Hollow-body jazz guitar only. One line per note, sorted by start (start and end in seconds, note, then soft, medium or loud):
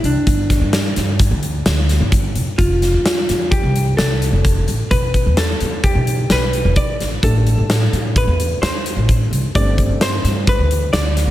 0.05 0.93 D4 medium
2.58 3.54 F4 medium
3.51 3.97 G4 medium
3.97 4.93 A4 medium
4.91 5.39 B4 medium
5.38 5.81 A4 medium
5.84 6.32 G4 medium
6.32 6.77 B4 medium
6.77 7.09 D5 medium
7.24 8.19 A4 medium
8.18 8.61 B4 medium
8.62 9.55 C5 medium
9.55 10.02 D5 medium
10.02 10.45 C5 medium
10.49 10.92 B4 medium
10.93 11.31 D5 medium